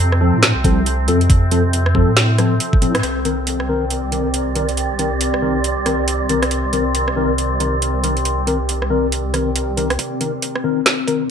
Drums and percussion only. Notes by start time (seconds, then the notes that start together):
0.12 cross-stick
0.43 snare, closed hi-hat
0.64 kick, closed hi-hat
0.86 closed hi-hat
1.08 closed hi-hat
1.21 closed hi-hat
1.30 kick, closed hi-hat
1.51 closed hi-hat
1.73 closed hi-hat
1.86 cross-stick
1.95 kick
2.17 snare, closed hi-hat
2.38 cross-stick, closed hi-hat
2.60 closed hi-hat
2.73 kick
2.82 closed hi-hat
2.95 cross-stick, closed hi-hat
3.03 closed hi-hat
3.25 closed hi-hat
3.47 closed hi-hat
3.60 cross-stick
3.90 closed hi-hat
4.12 closed hi-hat
4.34 closed hi-hat
4.56 closed hi-hat
4.69 closed hi-hat
4.77 closed hi-hat
4.99 closed hi-hat
5.21 closed hi-hat
5.34 cross-stick
5.64 closed hi-hat
5.86 cross-stick, closed hi-hat
6.08 closed hi-hat
6.29 closed hi-hat
6.42 cross-stick, closed hi-hat
6.51 closed hi-hat
6.73 closed hi-hat
6.95 closed hi-hat
7.08 cross-stick
7.38 closed hi-hat
7.60 closed hi-hat
7.82 closed hi-hat
8.04 closed hi-hat
8.17 closed hi-hat
8.25 closed hi-hat
8.47 closed hi-hat
8.69 closed hi-hat
8.82 cross-stick
9.12 closed hi-hat
9.34 cross-stick, closed hi-hat
9.56 closed hi-hat
9.77 closed hi-hat
9.90 cross-stick, closed hi-hat
9.99 kick, closed hi-hat
10.21 closed hi-hat
10.42 closed hi-hat
10.56 cross-stick
10.86 snare, closed hi-hat
11.08 kick, closed hi-hat